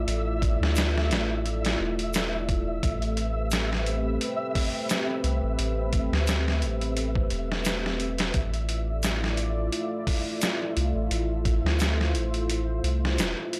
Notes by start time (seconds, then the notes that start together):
Already playing: A3 E4 F4 D5 E5
0.07 A1, closed hi-hat
0.42 kick, closed hi-hat
0.60 D2, snare
0.75 snare, closed hi-hat, shaker
0.98 snare
1.10 A1, snare, closed hi-hat
1.46 closed hi-hat
1.65 snare, closed hi-hat
1.80 E1
1.99 closed hi-hat
2.14 snare, closed hi-hat, shaker
2.49 kick, closed hi-hat
2.82 A1 C4 G4 B4, kick, closed hi-hat
3.02 closed hi-hat
3.17 closed hi-hat
3.51 snare, closed hi-hat, shaker
3.73 snare
3.86 closed hi-hat
4.21 closed hi-hat
4.55 kick, open hi-hat
4.89 snare, closed hi-hat, shaker
5.23 C2, closed hi-hat
5.43 A1
5.59 A1, closed hi-hat
5.93 kick, closed hi-hat
6.12 D2, snare
6.27 snare, closed hi-hat, shaker
6.48 snare
6.62 A1, closed hi-hat
6.81 closed hi-hat
6.97 closed hi-hat
7.15 kick
7.30 E1, closed hi-hat
7.52 snare
7.65 snare, closed hi-hat, shaker
7.86 snare
8.00 closed hi-hat
8.18 snare, closed hi-hat
8.33 A1 A3 E4 F4 D5, kick, closed hi-hat
8.54 closed hi-hat
8.69 closed hi-hat
9.03 snare, closed hi-hat, shaker
9.24 snare
9.37 closed hi-hat
9.72 closed hi-hat
10.07 kick, open hi-hat
10.41 snare, closed hi-hat, shaker
10.76 C2, closed hi-hat
10.95 A1
11.10 A1 C5, closed hi-hat
11.45 kick, closed hi-hat
11.64 D2, snare
11.79 snare, closed hi-hat, shaker
12.01 snare
12.14 A1, closed hi-hat
12.34 closed hi-hat
12.50 closed hi-hat
12.83 C2, closed hi-hat
13.05 snare
13.18 E1, snare, closed hi-hat, shaker
13.53 closed hi-hat